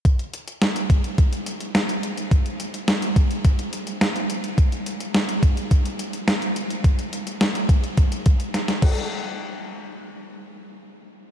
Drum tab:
CC |----------------|----------------|----------------|--------------x-|
HH |xxxxxxxxxxxxxxxx|xxxxxxxxxxxxxxxx|xxxxxxxxxxxxxxxx|xxxxxxxxxxxxxx--|
SD |----o-------o---|----o-------o---|----o-------o---|----o-------oo--|
BD |o-----o-o-------|o-----o-o-------|o-----o-o-------|o-----o-o-o---o-|

CC |----------------|
HH |----------------|
SD |----------------|
BD |----------------|